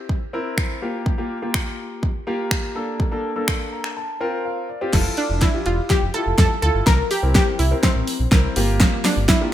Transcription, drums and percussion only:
0.09 kick medium
0.58 finger snap loud
0.58 kick loud
1.06 kick loud
1.54 finger snap loud
1.54 kick medium
2.03 kick medium
2.51 finger snap loud
2.51 kick loud
3.00 kick loud
3.48 finger snap loud
3.48 kick medium
3.84 finger snap medium
4.93 kick loud
4.93 snare medium
4.93 closed hi-hat medium
4.93 crash medium
5.17 closed hi-hat soft
5.41 kick loud
5.41 snare medium
5.41 closed hi-hat medium
5.66 closed hi-hat soft
5.90 kick medium
5.90 snare medium
5.90 closed hi-hat medium
6.14 closed hi-hat medium
6.38 kick loud
6.38 snare medium
6.38 closed hi-hat medium
6.62 closed hi-hat medium
6.87 kick loud
6.87 snare medium
6.87 closed hi-hat medium
7.11 open hi-hat medium
7.35 kick loud
7.35 snare medium
7.35 closed hi-hat medium
7.59 open hi-hat medium
7.83 kick medium
7.83 snare medium
7.83 closed hi-hat medium
8.07 open hi-hat medium
8.32 kick loud
8.32 snare medium
8.32 closed hi-hat medium
8.56 open hi-hat medium
8.80 kick loud
8.80 snare medium
8.80 closed hi-hat medium
9.05 snare medium
9.05 open hi-hat medium
9.29 kick loud
9.29 snare medium
9.29 closed hi-hat medium

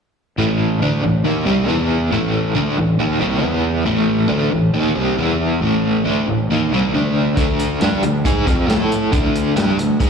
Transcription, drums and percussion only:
7.37 kick loud
7.37 closed hi-hat medium
7.59 closed hi-hat medium
7.81 snare loud
7.81 closed hi-hat medium
8.03 closed hi-hat medium
8.25 kick medium
8.25 closed hi-hat medium
8.47 kick medium
8.47 closed hi-hat medium
8.69 snare loud
8.69 closed hi-hat medium
8.92 closed hi-hat medium
9.13 kick loud
9.13 closed hi-hat medium
9.35 closed hi-hat medium
9.57 snare loud
9.57 closed hi-hat medium
9.79 closed hi-hat medium
10.00 kick medium
10.00 closed hi-hat medium

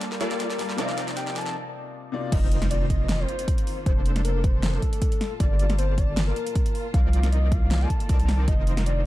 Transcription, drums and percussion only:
0.01 snare medium
0.01 closed hi-hat medium
0.12 snare medium
0.21 snare medium
0.21 closed hi-hat medium
0.31 snare medium
0.31 closed hi-hat medium
0.40 snare medium
0.40 closed hi-hat medium
0.50 snare medium
0.50 closed hi-hat medium
0.59 snare loud
0.59 open hi-hat medium
0.69 snare medium
0.78 snare loud
0.78 closed hi-hat medium
0.89 snare medium
0.98 snare loud
0.98 closed hi-hat medium
1.08 snare medium
1.08 closed hi-hat medium
1.17 snare loud
1.17 closed hi-hat medium
1.27 snare medium
1.36 snare loud
1.36 closed hi-hat medium
1.41 closed hi-hat medium
1.46 snare medium
2.32 kick loud
2.32 closed hi-hat medium
2.32 crash loud
2.52 closed hi-hat medium
2.62 snare medium
2.62 closed hi-hat medium
2.71 closed hi-hat medium
2.90 kick medium
2.90 closed hi-hat medium
3.09 snare loud
3.09 closed hi-hat medium
3.29 closed hi-hat medium
3.39 closed hi-hat medium
3.48 kick loud
3.48 closed hi-hat medium
3.58 closed hi-hat medium
3.67 open hi-hat medium
3.86 kick loud
3.86 closed hi-hat medium
4.06 closed hi-hat medium
4.16 snare medium
4.16 closed hi-hat medium
4.25 closed hi-hat medium
4.44 kick loud
4.44 closed hi-hat medium
4.63 snare loud
4.63 closed hi-hat medium
4.82 kick medium
4.82 closed hi-hat medium
4.93 closed hi-hat medium
5.02 kick loud
5.02 closed hi-hat medium
5.12 closed hi-hat medium
5.21 snare medium
5.21 open hi-hat medium
5.40 kick loud
5.40 closed hi-hat medium
5.59 closed hi-hat medium
5.70 snare medium
5.70 closed hi-hat medium
5.79 closed hi-hat medium
5.98 kick medium
5.98 closed hi-hat medium
6.17 snare loud
6.17 closed hi-hat medium
6.36 closed hi-hat medium
6.47 closed hi-hat medium
6.55 kick loud
6.55 closed hi-hat medium
6.66 closed hi-hat medium
6.75 open hi-hat medium
6.94 kick loud
6.94 closed hi-hat medium
7.13 closed hi-hat medium
7.23 snare medium
7.23 closed hi-hat medium
7.32 closed hi-hat medium
7.52 kick loud
7.52 closed hi-hat medium
7.71 snare loud
7.71 closed hi-hat medium
7.90 kick medium
7.90 closed hi-hat medium
8.00 closed hi-hat medium
8.09 kick loud
8.09 closed hi-hat medium
8.20 closed hi-hat medium
8.29 snare medium
8.29 open hi-hat medium
8.48 kick loud
8.48 closed hi-hat medium
8.67 closed hi-hat medium
8.77 snare medium
8.77 closed hi-hat medium
8.86 closed hi-hat medium

